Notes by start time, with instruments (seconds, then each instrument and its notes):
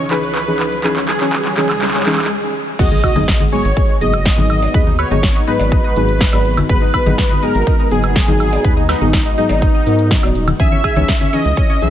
Already playing: analog synth pad C#2 C#3 D#3 E3, riser
0.11 synth stab E3 C#4 D#4 G#4, analog synth lead B4, digital synth lead B5, clap, open hi-hat
0.23 closed hi-hat
0.35 clap, closed hi-hat
0.48 synth stab E3 C#4 D#4 G#4
0.60 clap, open hi-hat
0.72 closed hi-hat
0.84 synth stab E3 C#4 D#4 G#4, synth arpeggio sound G#4, clap, closed hi-hat
0.96 synth arpeggio sound C#4, clap
1.08 analog synth lead G#4, synth arpeggio sound G#4, digital synth lead G#5, clap, open hi-hat
1.21 synth stab E3 C#4 D#4 G#4, synth arpeggio sound C#4, clap, closed hi-hat
1.33 clap, closed hi-hat
1.45 synth arpeggio sound C#4, clap
1.57 synth stab E3 C#4 D#4 G#4, synth arpeggio sound C#4, analog synth lead G#4, digital synth lead G#5, clap, open hi-hat
1.70 clap, closed hi-hat, high woodblock
1.82 synth arpeggio sound C#4, clap, closed hi-hat
1.88 clap
1.94 synth arpeggio sound C#4, clap
2.00 clap
2.06 synth stab E3 C#4 D#4 G#4, clap, open hi-hat
2.12 clap
2.18 clap, closed hi-hat, high woodblock
2.24 clap
2.79 analog synth bass G#1, synth stab G#2 F#3 B3 D#4 G#4, analog synth pad G#3 B3 D#4 F#4, synth arpeggio sound F#4, analog synth lead D#5, digital synth lead D#6, kick, closed hi-hat, crash, impact
2.91 synth arpeggio sound G#3, high conga
3.04 synth arpeggio sound F#4, kick, open hi-hat, high woodblock
3.16 analog synth bass G#1, synth stab G#2 F#3 B3 D#4 G#4, synth arpeggio sound G#3, closed hi-hat, high conga
3.28 kick, snare, closed hi-hat
3.40 synth arpeggio sound G#3, high conga
3.52 synth stab G#2 F#3 B3 D#4 G#4, synth arpeggio sound G#3, analog synth lead C#5, digital synth lead C#6, open hi-hat
3.65 analog synth bass G#1, closed hi-hat
3.77 synth arpeggio sound G#3, kick, closed hi-hat
3.89 synth arpeggio sound G#3
4.01 analog synth bass F#1, synth stab G#2 F#3 B3 D#4 G#4, analog synth lead D#5, digital synth lead D#6, open hi-hat
4.14 closed hi-hat, high woodblock
4.26 kick, snare, closed hi-hat
4.38 analog synth bass G#1, synth stab G#2 F#3 B3 D#4 G#4, high conga
4.50 open hi-hat, high woodblock
4.62 closed hi-hat, cowbell
4.74 analog synth bass D#2, synth stab G#2 F#3 B3 D#4 G#4, synth arpeggio sound B4, kick, closed hi-hat
4.87 synth arpeggio sound D#4, high conga
4.99 synth arpeggio sound B4, analog synth lead C#5, digital synth lead C#6, open hi-hat, high woodblock
5.11 analog synth bass G#1, synth stab G#2 F#3 B3 D#4 G#4, synth arpeggio sound D#4, closed hi-hat, high conga
5.23 kick, snare, closed hi-hat
5.35 synth arpeggio sound D#4
5.47 synth stab G#2 F#3 B3 D#4 G#4, synth arpeggio sound D#4, analog synth lead B4, digital synth lead B5, open hi-hat
5.60 analog synth bass G#1, closed hi-hat, cowbell
5.72 synth arpeggio sound D#4, kick, closed hi-hat
5.84 synth arpeggio sound D#4
5.96 analog synth bass G#1, synth stab G#2 F#3 B3 D#4 G#4, open hi-hat
6.09 closed hi-hat
6.21 kick, snare, closed hi-hat
6.33 analog synth bass G#1, synth stab G#2 F#3 B3 D#4 G#4, cowbell, high woodblock
6.45 open hi-hat
6.57 closed hi-hat, high conga, high woodblock
6.69 analog synth bass G#1, synth stab G#2 F#3 B3 D#4 G#4, synth arpeggio sound B4, analog synth lead B4, digital synth lead B5, kick, closed hi-hat
6.82 synth arpeggio sound D#4, high conga
6.94 synth arpeggio sound B4, kick, open hi-hat, high woodblock
7.06 analog synth bass G#1, synth stab G#2 F#3 B3 D#4 G#4, synth arpeggio sound D#4, closed hi-hat, high conga
7.18 kick, snare, closed hi-hat
7.31 synth arpeggio sound D#4, high conga
7.43 synth stab G#2 F#3 B3 D#4 G#4, synth arpeggio sound D#4, analog synth lead A#4, digital synth lead A#5, open hi-hat
7.55 analog synth bass G#1, closed hi-hat
7.67 synth arpeggio sound D#4, kick, closed hi-hat
7.79 synth arpeggio sound D#4
7.91 analog synth bass F#1, synth stab G#2 F#3 B3 D#4 G#4, analog synth lead G#4, digital synth lead G#5, open hi-hat
8.04 closed hi-hat, high woodblock
8.16 kick, snare, closed hi-hat
8.28 analog synth bass G#1, synth stab G#2 F#3 B3 D#4 G#4, high conga
8.40 open hi-hat, high woodblock
8.53 closed hi-hat, cowbell
8.65 analog synth bass D#2, synth stab G#2 F#3 B3 D#4 G#4, synth arpeggio sound B4, kick, closed hi-hat
8.77 synth arpeggio sound D#4, high conga
8.89 analog synth lead D#4, synth arpeggio sound B4, digital synth lead D#5, snare, open hi-hat, high woodblock
9.01 analog synth bass G#1, synth stab G#2 F#3 B3 D#4 G#4, synth arpeggio sound D#4, closed hi-hat, high conga
9.13 kick, snare, closed hi-hat
9.26 synth arpeggio sound D#4
9.38 synth stab G#2 F#3 B3 D#4 G#4, synth arpeggio sound D#4, analog synth lead D#4, digital synth lead D#5, open hi-hat
9.49 analog synth bass G#1, closed hi-hat, cowbell
9.62 synth arpeggio sound D#4, kick, closed hi-hat
9.75 synth arpeggio sound D#4
9.86 synth stab G#2 F#3 B3 D#4 A#4, analog synth bass G#2, open hi-hat
9.99 closed hi-hat
10.11 kick, snare, closed hi-hat
10.23 analog synth bass D#1, synth stab G#2 F#3 B3 D#4 F#4, cowbell, high woodblock
10.35 open hi-hat
10.48 closed hi-hat, high conga, high woodblock
10.60 analog synth bass C#2, analog synth pad C#3 C#4 E4, synth stab E3 C#4 D#4 G#4, synth arpeggio sound G#4, analog synth lead E5, digital synth lead E6, kick, closed hi-hat
10.71 synth arpeggio sound C#4, high conga
10.84 synth arpeggio sound G#4, kick, open hi-hat, high woodblock
10.96 analog synth bass C#2, synth stab E3 C#4 D#4 G#4, synth arpeggio sound C#4, closed hi-hat, high conga
11.08 kick, snare, closed hi-hat
11.21 synth arpeggio sound C#4, high conga
11.33 synth stab E3 C#4 D#4 G#4, synth arpeggio sound C#4, analog synth lead D#5, digital synth lead D#6, open hi-hat
11.45 analog synth bass C#2, closed hi-hat
11.57 synth arpeggio sound C#4, kick, closed hi-hat
11.70 synth arpeggio sound C#4
11.82 analog synth bass B1, synth stab E3 C#4 D#4 G#4, analog synth lead E5, digital synth lead E6, open hi-hat